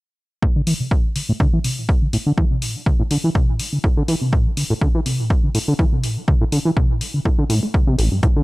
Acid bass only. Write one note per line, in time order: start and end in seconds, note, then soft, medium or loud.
0.42 0.47 A2 medium
0.56 0.62 D3 loud
0.67 0.74 E3 loud
0.80 0.93 C3 medium
0.91 1.06 A2 medium
1.04 1.11 A3 medium
1.16 1.23 D3 medium
1.29 1.33 A2 medium
1.40 1.47 D3 medium
1.53 1.59 E3 loud
1.64 1.79 C3 medium
1.78 1.90 A2 medium
2.02 2.08 D3 medium
2.13 2.18 A2 loud
2.26 2.33 D3 medium
2.38 2.45 E3 medium
2.51 2.63 C3 medium
2.62 2.77 A2 medium
2.75 2.81 A3 loud
2.86 2.94 D3 medium
3.00 3.03 A2 loud
3.11 3.18 D3 medium
3.24 3.30 E3 loud
3.35 3.50 C3 medium
3.48 3.61 A2 medium
3.59 3.67 A3 medium
3.73 3.79 D3 medium
3.84 3.88 A2 medium
3.97 4.03 D3 medium
4.08 4.16 E3 loud
4.21 4.34 C3 medium
4.33 4.47 A2 medium
4.46 4.52 A3 loud
4.57 4.64 D3 medium
4.70 4.74 A2 medium
4.81 4.89 D3 medium
4.95 5.01 E3 medium
5.06 5.21 C3 medium
5.19 5.32 A2 medium
5.30 5.38 A3 loud
5.44 5.50 D3 medium
5.55 5.59 A2 loud
5.68 5.74 D3 medium
5.79 5.86 E3 medium
5.92 6.05 C3 medium
6.03 6.18 A2 medium
6.17 6.23 A3 medium
6.28 6.35 D3 medium
6.41 6.45 A2 loud
6.52 6.59 D3 loud
6.65 6.72 E3 medium
6.77 6.91 C3 medium
6.90 7.02 A2 medium
7.01 7.08 A3 loud
7.14 7.20 D3 medium
7.25 7.30 A2 loud
7.38 7.45 D3 medium
7.50 7.61 A2 loud
7.63 7.76 A3 medium
7.74 7.85 C3 medium
7.87 7.97 C3 loud
7.98 8.09 A1 loud
8.12 8.21 G2 medium
8.23 8.27 A2 medium
8.36 8.42 D3 loud